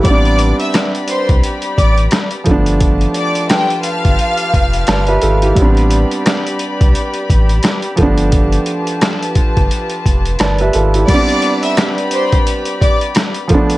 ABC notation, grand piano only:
X:1
M:4/4
L:1/16
Q:"Swing 16ths" 1/4=87
K:Gmix
V:1 name="Grand piano"
[EG] z12 z3 | z12 [Bda] [GBe] [FA] [EG]- | [EG] z12 z3 | z12 [Bda] [GBe] [FA] [EG]- |
[EG] z12 z3 |]
V:2 name="Grand piano"
[G,B,CD]12- [G,B,CD]2 [F,A,B,D]2- | [F,A,B,D]12- [F,A,B,D]2 z2 | [G,B,CD]12- [G,B,CD]2 [F,A,B,D]2- | [F,A,B,D]12- [F,A,B,D]2 z2 |
[G,B,CD]12- [G,B,CD]2 [F,A,B,D]2 |]